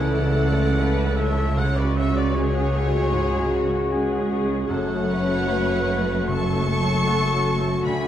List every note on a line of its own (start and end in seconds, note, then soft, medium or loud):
0.00 1.57 C#2 medium
0.00 4.65 C#2 medium
0.00 1.56 C#3 medium
0.00 4.65 C#3 medium
0.00 1.42 E3 medium
0.00 0.17 A3 soft
0.00 0.25 A3 medium
0.00 1.42 A3 medium
0.00 0.26 E4 medium
0.00 0.37 E4 soft
0.00 0.26 A4 medium
0.00 0.57 A4 medium
0.00 0.78 A4 medium
0.00 1.18 D5 medium
0.00 0.97 E5 medium
0.00 1.17 F#5 medium
0.00 1.18 F#5 medium
0.00 1.60 B5 medium
0.19 1.60 A3 medium
0.25 0.49 A3 medium
0.25 0.49 E4 soft
0.25 0.49 A4 medium
0.39 1.37 E4 medium
0.52 0.75 A3 medium
0.52 0.76 E4 soft
0.52 0.76 A4 medium
0.58 1.17 A4 medium
0.78 1.02 A3 soft
0.78 1.02 E4 soft
0.78 1.02 A4 medium
0.78 1.17 B4 medium
0.78 1.60 A5 medium
0.98 1.60 E5 medium
1.05 1.29 A3 soft
1.05 1.28 E4 soft
1.05 1.29 A4 medium
1.16 1.60 A4 medium
1.16 1.57 A4 medium
1.16 1.56 C#5 medium
1.16 1.59 E5 medium
1.16 1.57 E5 medium
1.32 1.55 A3 soft
1.32 1.55 E4 medium
1.32 1.55 A4 soft
1.38 1.60 E4 medium
1.57 1.82 C#2 medium
1.57 4.73 C#3 medium
1.57 2.36 F#4 medium
1.57 4.66 F#4 medium
1.57 4.66 G#4 medium
1.57 1.76 C#5 medium
1.57 1.77 F#5 medium
1.75 3.32 C#4 medium
1.75 1.96 B4 medium
1.75 1.98 D5 medium
1.75 1.97 D5 medium
1.83 2.06 G#3 soft
1.83 2.07 C#4 soft
1.83 2.07 F#4 medium
1.96 3.51 F#4 medium
1.96 2.16 C#5 medium
1.96 2.18 E5 medium
1.96 2.16 E5 medium
2.09 2.33 G#3 soft
2.09 2.33 C#4 soft
2.09 2.33 F#4 soft
2.17 2.36 B4 medium
2.17 2.74 C#5 medium
2.17 2.36 D5 medium
2.34 2.59 G#3 medium
2.34 2.59 C#4 medium
2.34 2.59 F#4 medium
2.34 2.74 G#4 medium
2.34 4.31 G#4 medium
2.34 4.30 C#5 medium
2.34 4.31 C#5 loud
2.34 3.91 G#5 medium
2.55 4.11 F#5 medium
2.61 2.85 G#3 soft
2.61 2.85 C#4 soft
2.61 2.85 F#4 soft
2.74 3.13 A3 medium
2.74 3.71 C#5 medium
2.87 3.10 G#3 medium
2.87 3.11 C#4 soft
2.87 3.11 F#4 medium
2.94 4.48 G#4 medium
3.12 3.38 G#2 medium
3.12 4.72 G#3 medium
3.12 3.53 G#4 medium
3.33 5.07 C#4 medium
3.38 3.63 G#3 medium
3.38 3.63 C#4 soft
3.38 3.63 F#4 medium
3.52 6.07 F#4 medium
3.52 3.92 F#4 medium
3.66 3.89 G#3 soft
3.66 3.90 C#4 medium
3.66 3.90 F#4 medium
3.73 4.30 C#5 medium
3.92 4.16 G#3 medium
3.92 4.16 C#4 soft
3.92 4.17 F#4 medium
3.92 4.68 G#4 medium
3.92 4.72 G#5 medium
4.12 5.46 F#5 medium
4.19 4.41 G#3 soft
4.19 4.41 C#4 soft
4.19 4.42 F#4 medium
4.31 5.66 C#5 medium
4.45 4.67 G#3 soft
4.45 4.68 C#4 soft
4.45 4.68 F#4 medium
4.50 4.72 G#4 medium
4.67 7.82 F#1 medium
4.67 7.88 F#2 medium
4.67 7.81 F#2 medium
4.67 4.94 F#2 medium
4.67 8.08 A3 medium
4.67 8.08 F#4 medium
4.67 5.08 A4 medium
4.67 6.24 C#5 loud
4.67 6.23 F#5 medium
4.67 6.30 F#5 medium
4.89 6.48 A3 medium
4.95 5.18 A3 soft
4.95 5.18 C#4 soft
4.95 5.18 F#4 soft
5.08 6.67 C#4 medium
5.08 6.29 B4 medium
5.22 5.45 A3 soft
5.22 5.45 C#4 medium
5.22 5.46 F#4 medium
5.27 5.87 A4 medium
5.47 5.71 A3 medium
5.47 5.71 C#4 medium
5.47 5.71 F#4 medium
5.47 7.06 F#5 medium
5.67 7.26 C#5 medium
5.74 5.99 A3 medium
5.74 5.99 C#4 soft
5.74 5.99 F#4 medium
5.88 6.88 A4 medium
6.01 6.25 A3 soft
6.01 6.26 C#4 soft
6.01 6.26 F#4 medium
6.08 7.65 F#4 medium
6.28 6.54 C#2 medium
6.28 7.88 C#3 medium
6.28 7.85 A4 medium
6.28 7.87 A5 medium
6.28 7.85 C#6 loud
6.49 8.08 A3 soft
6.55 6.79 A3 soft
6.55 6.79 C#4 soft
6.55 6.79 F#4 soft
6.69 7.89 C#4 medium
6.81 7.05 A3 soft
6.81 7.05 C#4 soft
6.81 7.05 F#4 soft
6.89 7.46 A4 soft
7.07 7.30 A3 medium
7.07 7.31 C#4 soft
7.07 7.31 F#4 medium
7.07 8.08 F#5 medium
7.27 7.88 C#5 medium
7.34 7.57 A3 soft
7.34 7.57 C#4 soft
7.34 7.58 F#4 soft
7.47 8.08 A4 medium
7.60 7.83 A3 soft
7.60 7.83 C#4 soft
7.60 7.83 F#4 soft
7.66 8.08 F#4 medium
7.85 8.08 D2 medium
7.85 8.08 D3 medium
7.85 8.08 F#4 medium
7.85 8.08 G#5 medium
7.85 8.08 B5 medium
8.04 8.08 D4 soft